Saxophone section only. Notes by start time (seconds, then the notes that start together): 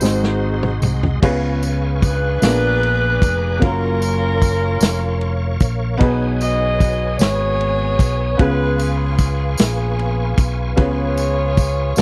0.04 D#4 F#4 C5
2.03 D4 G#4 B4
3.62 C#4 F4 A#4
6.41 F#4 G#4 D#5
7.18 F#4 G#4 C#5
8.40 F4 G#4 B4
9.60 B3 F4 G#4
10.80 F4 G#4 C#5
11.98 F4 G#4 D5